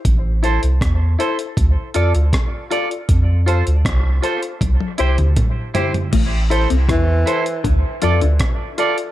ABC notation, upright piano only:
X:1
M:4/4
L:1/16
Q:1/4=79
K:Am
V:1 name="Upright piano"
z2 [EAc] z3 [EAc] z3 [FAd] [Ad] z2 [FAd] z | z2 [FAc] z3 [FAc] z3 [EGc] [Gc] z2 [EGc] z | z2 [EAc] z3 [EAc] [Ac] z2 [FAd] z3 [FAd] z |]